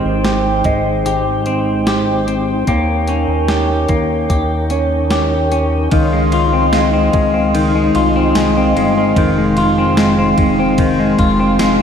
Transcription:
0.00 2.94 D#3 medium
0.00 2.65 G#3 medium
0.00 1.45 C4 medium
0.00 2.65 D#4 medium
0.00 0.25 G4 medium
0.00 2.65 C5 medium
0.00 0.64 D#5 medium
0.00 5.88 G5 medium
0.05 0.62 G#1 medium
0.25 1.05 G4 medium
0.25 snare medium
0.25 closed hi-hat medium
0.64 1.04 G#1 medium
0.64 2.67 G#3 medium
0.64 3.04 D#5 medium
0.64 kick medium
0.64 closed hi-hat soft
1.06 2.64 G#1 loud
1.06 1.87 G4 medium
1.06 closed hi-hat medium
1.46 2.26 C4 medium
1.46 closed hi-hat soft
1.87 2.68 G4 medium
1.87 snare loud
1.87 closed hi-hat medium
2.27 2.76 C4 soft
2.27 closed hi-hat soft
2.67 3.26 D#2 medium
2.67 3.88 A#3 medium
2.67 5.89 D#4 medium
2.67 3.48 G4 medium
2.67 5.89 A#4 medium
2.67 5.89 C#5 medium
2.67 kick loud
2.67 closed hi-hat medium
3.08 4.70 C#4 medium
3.08 closed hi-hat soft
3.28 3.86 D#2 medium
3.48 4.29 G4 medium
3.48 snare loud
3.48 closed hi-hat medium
3.89 4.28 D#2 medium
3.89 6.00 A#3 medium
3.89 kick medium
3.89 closed hi-hat soft
4.30 5.88 D#2 loud
4.30 5.10 G4 medium
4.30 kick medium
4.30 closed hi-hat medium
4.70 5.52 C#4 medium
4.70 6.29 C#5 medium
4.70 closed hi-hat soft
5.11 6.01 G4 medium
5.11 snare loud
5.11 closed hi-hat medium
5.52 6.53 C#4 soft
5.52 closed hi-hat soft
5.91 7.10 C#2 loud
5.91 7.54 D#3 medium
5.91 9.13 D#4 medium
5.91 9.13 D#5 medium
5.91 11.82 F5 medium
5.91 11.82 C6 medium
5.91 kick loud
5.91 ride medium
6.13 6.73 G#3 medium
6.32 7.95 F4 medium
6.32 ride soft
6.53 6.93 C4 medium
6.73 7.13 G#3 medium
6.73 9.40 D#5 medium
6.73 snare loud
6.73 ride soft
6.73 tambourine medium
6.93 7.34 C4 medium
7.13 7.91 C#2 loud
7.13 7.75 G#3 medium
7.13 kick medium
7.13 ride soft
7.34 8.16 C4 medium
7.54 9.17 D#3 medium
7.54 ride medium
7.75 8.36 G#3 medium
7.95 8.34 C2 medium
7.95 9.57 F4 medium
7.95 ride soft
8.16 8.56 C4 medium
8.35 8.74 C2 medium
8.35 8.76 G#3 medium
8.35 9.53 G#5 medium
8.35 snare loud
8.35 ride medium
8.35 tambourine medium
8.57 8.97 C4 medium
8.61 9.76 C6 medium
8.76 9.15 G1 medium
8.76 9.37 G#3 medium
8.76 ride soft
8.98 9.78 C4 medium
9.16 10.34 F1 loud
9.16 10.79 D#3 medium
9.16 11.82 G#3 medium
9.16 11.82 D#4 medium
9.16 kick loud
9.16 ride medium
9.38 9.97 G#3 medium
9.57 11.18 F4 medium
9.57 ride soft
9.78 10.18 C4 medium
9.97 10.38 G#3 medium
9.97 snare loud
9.97 ride medium
9.97 tambourine medium
10.18 10.59 C4 medium
10.38 11.15 F1 medium
10.38 10.99 G#3 medium
10.38 kick medium
10.38 ride soft
10.59 11.39 C4 medium
10.78 11.82 D#3 medium
10.78 kick medium
10.78 ride medium
10.99 11.59 G#3 medium
11.19 11.58 F1 medium
11.19 11.82 F4 medium
11.19 kick medium
11.19 ride soft
11.40 11.80 C4 medium
11.59 11.82 F1 medium
11.59 11.82 G#3 medium
11.59 snare loud
11.59 ride medium
11.59 tambourine medium

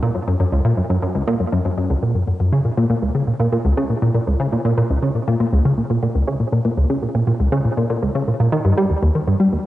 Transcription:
0.03 0.10 A#2 loud
0.15 0.20 F#2 medium
0.28 0.35 F#2 loud
0.40 0.45 F#2 loud
0.52 0.60 C#2 loud
0.65 0.73 A#2 loud
0.77 0.82 F#2 medium
0.90 0.98 F#2 loud
1.02 1.07 F#2 loud
1.15 1.23 C#2 loud
1.27 1.35 A#2 loud
1.40 1.45 F#2 medium
1.52 1.60 F#2 loud
1.65 1.70 F#2 loud
1.77 1.89 F#2 loud
1.90 1.95 C#2 loud
2.03 2.14 A#2 medium
2.15 2.23 F#2 medium
2.27 2.32 F#2 medium
2.40 2.51 F#2 medium
2.52 2.60 C#3 loud
2.65 2.70 A#2 medium
2.77 2.85 A#2 loud
2.90 2.94 A#2 loud
3.02 3.10 C#2 loud
3.15 3.23 C#3 loud
3.27 3.32 A#2 medium
3.40 3.47 A#2 loud
3.53 3.57 A#2 loud
3.65 3.73 C#2 loud
3.77 3.85 C#3 loud
3.90 3.95 A#2 medium
4.02 4.10 A#2 loud
4.15 4.19 A#2 medium
4.27 4.35 C#2 loud
4.40 4.48 C#3 loud
4.52 4.57 A#2 medium
4.65 4.73 A#2 loud
4.78 4.82 A#2 loud
4.90 4.98 C#2 loud
5.03 5.10 C#3 loud
5.15 5.20 A#2 medium
5.28 5.35 A#2 loud
5.40 5.45 A#2 loud
5.53 5.60 C#2 loud
5.65 5.73 C#3 loud
5.78 5.82 A#2 medium
5.90 5.98 A#2 loud
6.03 6.07 A#2 medium
6.15 6.23 C#2 loud
6.28 6.35 C#3 loud
6.40 6.45 A#2 medium
6.52 6.60 A#2 loud
6.65 6.70 A#2 loud
6.77 6.85 C#2 loud
6.90 6.98 C#3 loud
7.03 7.07 A#2 medium
7.15 7.23 A#2 medium
7.27 7.32 A#2 loud
7.40 7.48 C#2 loud
7.52 7.60 C#3 loud
7.65 7.70 A#2 medium
7.77 7.85 A#2 loud
7.90 7.95 A#2 loud
8.03 8.10 C#2 loud
8.15 8.23 C#3 loud
8.28 8.32 A#2 medium
8.40 8.48 A#2 loud
8.52 8.57 D#3 loud
8.65 8.73 G2 loud
8.78 8.85 G3 loud
8.90 8.95 D#2 medium
9.03 9.10 D#2 loud
9.15 9.20 D#3 medium
9.28 9.35 G2 loud
9.40 9.48 G3 loud
9.53 9.57 D#2 medium

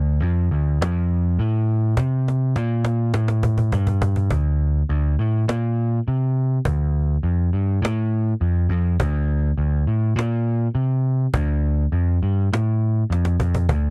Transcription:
0.00 0.20 D2 loud
0.22 0.50 F2 loud
0.51 0.79 D2 medium
0.81 1.37 F2 medium
0.81 cajon slap loud
1.39 1.95 A2 loud
1.97 2.53 C3 loud
1.97 cajon bass loud
1.97 cajon slap medium
2.28 cajon slap medium
2.56 3.12 A#2 loud
2.56 cajon slap medium
2.85 cajon slap medium
3.14 3.70 A2 loud
3.14 cajon slap loud
3.28 cajon slap medium
3.43 cajon bass medium
3.58 cajon bass medium
3.72 4.29 G2 loud
3.72 cajon bass loud
3.87 cajon bass medium
4.02 cajon bass loud
4.16 cajon bass medium
4.30 4.81 D2 medium
4.30 cajon bass loud
4.89 5.15 D2 loud
5.19 5.44 A2 medium
5.48 5.98 A#2 loud
5.48 cajon slap loud
6.08 6.58 C3 medium
6.65 7.16 D2 medium
6.65 cajon bass loud
7.23 7.49 F2 medium
7.53 7.78 G2 medium
7.82 8.33 A2 loud
7.82 cajon slap loud
8.41 8.66 F2 medium
8.69 8.95 F2 medium
9.00 9.50 D2 loud
9.00 cajon bass loud
9.58 9.83 D2 medium
9.87 10.13 A2 medium
10.16 10.67 A#2 loud
10.16 cajon slap loud
10.75 11.25 C3 loud
11.34 11.84 D2 loud
11.34 cajon bass loud
11.92 12.18 F2 loud
12.23 12.48 G2 medium
12.53 13.03 A2 loud
12.53 cajon slap loud
13.10 13.35 F2 medium
13.10 cajon slap medium
13.25 cajon slap medium
13.40 13.66 F2 medium
13.40 cajon bass loud
13.55 cajon bass medium
13.69 13.90 D2 loud
13.69 cajon bass loud

